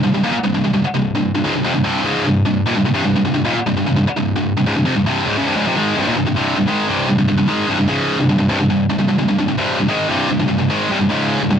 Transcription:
0.04 C2 G2
0.14 C2 G2
0.24 D#2 A#2
0.34 muted distorted electric guitar stroke
0.44 C2 G2
0.55 C2 G2
0.64 C2 G2
0.74 C2 G2
0.85 muted distorted electric guitar stroke
0.95 C2 G2
1.15 C2 G2
1.35 C2 G2
1.44 C#2 G#2
1.55 C2 G2
1.64 F2 C3
1.74 C2 G2
1.84 C2 G2 C3
2.04 C#2 G#2 C#3
2.25 C2 G2
2.45 C2 G2
2.66 D#2 A#2
2.76 C2 G2
2.85 C2 G2
2.94 C2 G2
3.04 C2 G2
3.16 C2 G2
3.25 C2 G2
3.34 C2 G2
3.45 D#2 A#2
3.56 muted distorted electric guitar stroke
3.66 C2 G2
3.77 C2 G2
3.86 C2 G2
3.96 C2 G2
4.08 muted distorted electric guitar stroke
4.17 C2 G2
4.36 C2 G2
4.57 C2 G2
4.66 C#2 G#2
4.76 C2 G2
4.85 F2 C3
4.96 C2 G2
5.06 C2 G2 C3
5.25 C#2 G#2
5.37 F#2 C#3
5.46 C2 G2
5.56 C#2 G#2
5.66 F2 C3
5.76 G#2 D#3 G#3
5.96 C2 G2
6.07 D#2 A#2
6.16 C2 G2
6.26 C2 G2
6.36 C2 G2 C3
6.57 C2 G2
6.67 G#2 D#3 G#3
6.88 C2 G2 C3
7.08 C2 G2
7.18 C2 G2
7.28 C2 G2
7.38 C2 G2
7.48 G#2 D#3 G#3
7.68 C2 G2
7.79 C2 G2
7.88 C#2 G#2 C#3
8.18 C2 G2
8.29 C2 G2
8.38 C2 G2
8.49 C2 G2
8.60 C2 G2
8.70 C2 G2
8.90 C2 G2
8.99 C2 G2
9.09 C2 G2
9.19 C2 G2
9.29 C2 G2
9.39 C2 G2
9.48 C2 G2
9.58 C2 G2 C3
9.79 C2 G2
9.88 G#2 D#3 G#3
10.08 C2 G2 C3
10.29 C2 G2
10.40 C2 G2
10.48 C2 G2
10.59 C2 G2
10.70 G#2 D#3 G#3
10.90 C2 G2
10.99 C2 G2
11.09 C#2 G#2 C#3
11.40 C2 G2
11.50 C2 G2

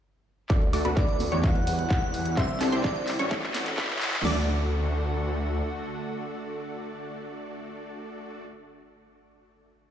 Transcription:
0.49 D2 D3 A3 D4 F#4 A4 D5 D6, kick, clap, closed hi-hat, riser
0.62 closed hi-hat
0.73 D2 A3 D4 F#4 A4 D5 D6, open hi-hat
0.84 D2 D3 A3 D4 F#4 A4 B4 D5 B5, closed hi-hat
0.97 D5, kick, clap, closed hi-hat
1.08 closed hi-hat
1.20 A3 D4 F#4 D5, open hi-hat
1.32 E2 B3 E4 F#4 G4 C#5 C#6, closed hi-hat
1.43 E3 G3 E4 F#4 B4 F#5, kick, clap, closed hi-hat
1.55 closed hi-hat
1.67 G3 E4 B4 F#5, open hi-hat
1.79 closed hi-hat
1.90 kick, clap, closed hi-hat
2.02 G3 E4 B4 F#5, closed hi-hat
2.14 open hi-hat
2.26 closed hi-hat
2.37 C2 C3 D3 G3 C4 D4 E4 G4 C5 E5 C6, kick, clap, closed hi-hat
2.49 closed hi-hat
2.61 C2 C4 D4 E4 G4 A4 D5 A5, clap, open hi-hat
2.68 C5
2.72 C2 C3 G3 C4 D4 E4 G4 C5 D5 C6, closed hi-hat
2.84 kick, clap, closed hi-hat
2.96 closed hi-hat
3.07 G3 D4 E4 C5, clap, open hi-hat
3.19 A1 C#4 E4 F#4 A4 C#5 C#6, closed hi-hat
3.31 A2 C#3 A3 E4 F#4 C#5, kick, clap, closed hi-hat
3.43 clap, closed hi-hat
3.54 A2 A3 E4 F#4 C#5, clap, open hi-hat
3.66 clap, closed hi-hat
3.78 A1 C#4 E4 F#4 A4 B4 B5, kick, clap, closed hi-hat
3.84 clap
3.89 A2 A3 E4 F#4 C#5, clap, closed hi-hat
3.96 clap
4.01 clap, open hi-hat
4.07 clap
4.13 clap, closed hi-hat
4.19 clap
4.23 D2 D3 A3 D4 F#4 A4 D5 D6, snare, crash

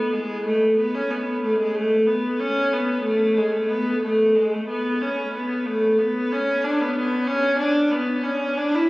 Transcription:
Already playing: B3
0.13 G#3
0.44 A3
0.78 B3
0.95 C#4
1.11 B3
1.43 A3
1.58 G#3
1.76 A3
2.07 B3
2.40 C#4
2.73 B3
3.05 A3
3.37 G#3
3.53 A3
3.69 B3
4.03 A3
4.35 G#3
4.53 A3
4.69 B3
5.02 C#4
5.34 B3
5.66 A3
5.99 B3
6.32 C#4
6.64 D4
6.81 B3
6.96 B3
7.27 C#4
7.59 D4
7.92 B3
8.23 C#4
8.57 D4
8.75 E4

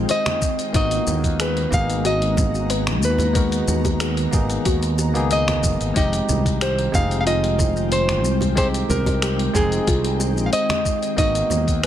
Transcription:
Already playing: D#3 G#3 C4 D#4 F4 G4 G#4 G5
0.09 C5 D#5, closed hi-hat, shaker
0.26 finger snap, closed hi-hat, high bongo, high conga
0.42 kick, shaker
0.59 closed hi-hat, shaker
0.73 G#1 A#3 B3 D#4 F#4 D#5 A#5, kick, closed hi-hat, shaker
0.91 closed hi-hat, shaker
1.07 D#2, low conga, shaker
1.24 kick, closed hi-hat, shaker
1.40 G#4 B4, finger snap, closed hi-hat, shaker
1.57 closed hi-hat
1.70 G#1 A#3 B3 D#4 G#4 F5, kick, high conga, shaker
1.90 closed hi-hat, shaker
2.05 F#4 D#5, closed hi-hat, shaker
2.22 closed hi-hat
2.37 kick, low conga, shaker
2.55 shaker
2.70 B4, closed hi-hat, shaker
2.87 finger snap, closed hi-hat, high conga
3.02 D#2 B4, shaker
3.18 closed hi-hat, high bongo, low conga, shaker
3.33 G#3 B3 D#4 F#4 A#4, kick, closed hi-hat, shaker
3.52 closed hi-hat, shaker
3.68 D#2, low conga, shaker
3.85 kick, closed hi-hat, high bongo, shaker
4.00 G#4, finger snap, closed hi-hat, shaker
4.17 closed hi-hat, shaker
4.31 G#1 A#3 B3 D#4 G#4, kick, high conga, shaker
4.50 closed hi-hat, shaker
4.65 D#2 F#4, kick, closed hi-hat, shaker
4.83 closed hi-hat, shaker
4.98 high bongo, shaker
5.14 C#2 A#3 B3 D#4 G#4, closed hi-hat, shaker
5.31 D#5, closed hi-hat, shaker
5.48 finger snap, closed hi-hat, high bongo, high conga
5.63 F#1, kick, shaker
5.80 G#1, closed hi-hat, shaker
5.94 F1 G#3 C4 D#4 F4 G4 D#5 G5, kick, closed hi-hat, shaker
6.13 closed hi-hat, shaker
6.29 C2, low conga, shaker
6.46 kick, closed hi-hat, shaker
6.61 G4 C5, finger snap, closed hi-hat, shaker
6.79 closed hi-hat
6.92 F1 G#3 C4 D#4 G#4 F5, kick, high conga, shaker
7.11 closed hi-hat, shaker
7.21 F5
7.26 F4 D#5, closed hi-hat, shaker
7.44 closed hi-hat
7.58 kick, low conga, shaker
7.76 shaker
7.92 C5, closed hi-hat, shaker
8.09 finger snap, closed hi-hat, high conga
8.24 C2, shaker
8.41 closed hi-hat, high bongo, low conga, shaker
8.56 G#3 C4 D#4 G4 G#4 C5, kick, closed hi-hat, shaker
8.74 closed hi-hat, shaker
8.89 C2 A#4, low conga, shaker
9.06 kick, closed hi-hat, high bongo, shaker
9.22 G4, finger snap, closed hi-hat, shaker
9.39 closed hi-hat
9.53 F1 G#3 C4 D#4 G#4, kick, high conga, shaker
9.72 closed hi-hat, shaker
9.87 C2 F4, kick, closed hi-hat, shaker
10.04 closed hi-hat
10.20 high bongo, shaker
10.37 A#1, shaker
10.46 F5
10.53 C5 D#5, closed hi-hat, shaker
10.69 finger snap, closed hi-hat, high bongo, high conga
10.85 kick, shaker
11.03 closed hi-hat, shaker
11.17 G#1 D#3 A#3 B3 D#4 F#4 D#5 A#5, kick, closed hi-hat, shaker
11.35 closed hi-hat, shaker
11.50 D#2, low conga, shaker
11.67 kick, closed hi-hat, shaker
11.83 G#4 B4, finger snap, closed hi-hat

